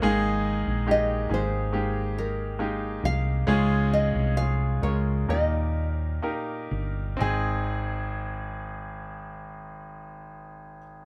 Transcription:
Already playing: A#4
0.02 G#1 G#2 D#3 G#3 A#3 D#4 G#4
0.67 A#1
0.87 G#3 A#3 D#4 G4
0.91 D#5
1.29 G#1 G#3 A#3 D#4 G#4
1.34 C5
1.72 G#3 A#3 D#4 G4
2.18 A#4
2.59 G#3 A#3 D#4 G4
3.03 C2 F5
3.47 C#2 G#2 G#3 C#4 F4 G#4
3.93 D#5
4.15 C2
4.37 G#3 C#4 F4 G#4 F5
4.82 C#2 G#3 C#4 F4 A#4 C#5
5.29 D#2 A#2 A#3 D#4 G4 A#4 D#5
5.94 C#5
6.22 A#3 D#4 G4 A#4
6.71 G1
7.17 G#1 C4 D#4 G#5
7.22 G#4

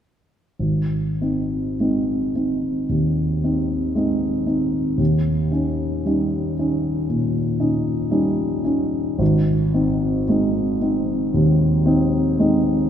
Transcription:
0.59 G#1
1.21 C4 D#4
1.80 G#3 C4 D#4
2.35 C4 D#4
2.89 D#2
3.44 C4 D#4
3.95 G#3 C4 D#4
4.47 C4 D#4
4.98 D#2
5.51 C#4 D#4
6.05 G3 C#4 D#4
6.59 C#4 D#4
7.09 A#2
7.60 C#4 D#4
8.11 G3 C#4 D#4
8.64 C#4 D#4
9.19 G#1
9.74 C4 D#4
10.29 G#3 C4 D#4
10.81 C4 D#4
11.34 D#2
11.86 C4 D#4
12.39 G#3 C4 D#4

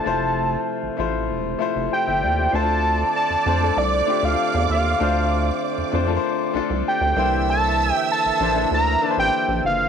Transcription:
Already playing: F3 A3 A5
0.04 F1 C3 A3 E4 F4 C5
0.83 A1
0.97 A1 A3 E4 F4 C5
1.30 E1
1.59 A3 E4 F4 C5
1.76 F1
1.92 E4 C5 G5
2.07 G1 G4 E5
2.22 D#2 F4 D5
2.39 E4 C5
2.52 D2 D3 A3 C4 D4 E4 F4 C5 D5 A5 D6
2.61 F4
3.16 A5
3.30 F2
3.45 F2 A3 D4 F4 C5
3.60 A3 D4 F4 A4
3.77 C2 D5
4.07 A3 D4 F4 G4
4.23 D2 F5
4.54 E2
4.69 D#2 F5
4.99 D2 A3 D4 F4 C5
5.78 F2
5.92 F2 A3 D4 F4 C5
6.07 A3 D4 F4 A#4
6.17 C5
6.53 C2 A3 D4 F4 A4
6.70 C2
6.88 G5
7.01 D2
7.16 C2 E3 A#3 D4 E4 C5 E5 E6
7.50 A5
7.93 G5
8.12 A5
8.25 A#1
8.39 A#1 A#3 D4 E4 C5
8.54 A#3 D4 E4 A4
8.71 D2 A#5
9.01 A#3 D4 E4 B4
9.05 A5
9.11 C5
9.18 A1 G5
9.48 A#1
9.64 F#1 F5

